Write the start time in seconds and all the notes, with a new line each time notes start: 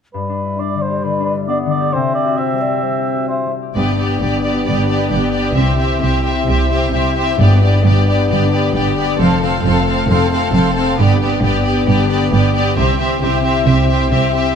0.14 G2 G3 B4 D5
0.29 D4
0.45 E4
0.59 D4 D5
0.75 D3
0.82 C5
0.90 G4
1.04 D3 B4
1.20 D4
1.26 B4
1.34 E4
1.48 B3 D4 D5
1.66 D3 D5
1.80 G4
1.93 C3 C4 C5 E5
2.10 E4
2.15 D5
2.24 F#4
2.37 E4 C5 E5
2.53 G3
2.61 D5
2.68 G4
2.83 G3 C5
2.99 E4
3.15 F#4
3.28 E4 C5 E5
3.46 G3
3.62 G4
3.75 G1 G2 B3 D4 G4 D5
3.92 D4
3.97 B3 G4 D5
4.07 B4
4.20 G1 G2 B3 G4 D5 G5
4.36 D5
4.43 B3 G4 D5
4.53 G4
4.66 G1 G2 D3 B3 G4 D5
4.83 D4
4.87 B3 G4 D5
4.98 B4
5.10 G1 G2 B3 G4 D5 G5
5.28 D5
5.32 B3 G4 D5
5.41 G4
5.55 C2 C3 C4 E4 G4 E5
5.72 E4
5.79 C4 G4 E5
5.88 C5
6.01 C2 C3 C4 G4 E5 G5
6.18 E5
6.24 C4 G4 E5
6.33 G4
6.47 C2 C3 G3 C4 G4 E5
6.64 E4
6.71 C4 G4 E5
6.79 C5
6.93 C2 C3 C4 G4 E5 G5
7.10 E5
7.16 C4 G4 E5
7.25 G4
7.38 G1 G2 B3 D4 G4 D5
7.54 D4
7.61 B3 G4 D5
7.69 B4
7.83 G1 G2 B3 G4 D5 G5
7.99 D5
8.08 B3 G4 D5
8.14 G4
8.29 G1 G2 D3 B3 G4 D5
8.45 D4
8.51 B3 G4 D5
8.60 B4
8.74 G1 G2 B3 G4 D5 G5
8.90 D5
8.97 B3 G4 D5
9.05 G4
9.18 F1 F2 A3 C4 A4 F5
9.36 F4
9.42 C4 A4 F5
9.50 C5
9.64 F1 F2 C4 A4 F5 A5
9.80 F5
9.87 C4 A4 F5
9.96 A4
10.08 F1 F2 C3 C4 A4 F5
10.25 F4
10.32 C4 A4 F5
10.40 C5
10.53 F1 F2 C4 A4 F5 A5
10.69 F5
10.76 C4 A4 F5
10.83 A4
10.98 G1 G2 B3 D4 G4 D5
11.13 D4
11.22 B3 G4 D5
11.29 B4
11.42 G1 G2 B3 G4 D5 G5
11.58 D5
11.64 B3 G4 D5
11.73 G4
11.87 G1 G2 D3 B3 G4 D5
12.02 D4
12.10 B3 G4 D5
12.17 B4
12.31 G1 G2 B3 G4 D5 G5
12.47 D5
12.55 B3 G4 D5
12.62 G4
12.77 C2 C3 C4 E4 G4 E5
12.92 E4
12.98 C4 G4 E5
13.06 C5
13.21 C2 C3 C4 G4 E5 G5
13.36 E5
13.43 C4 G4 E5
13.51 G4
13.66 C2 C3 G3 C4 G4 E5
13.81 E4
13.89 C4 G4 E5
13.96 C5
14.11 C2 C3 C4 G4 E5 G5
14.27 E5
14.34 C4 G4 E5
14.42 G4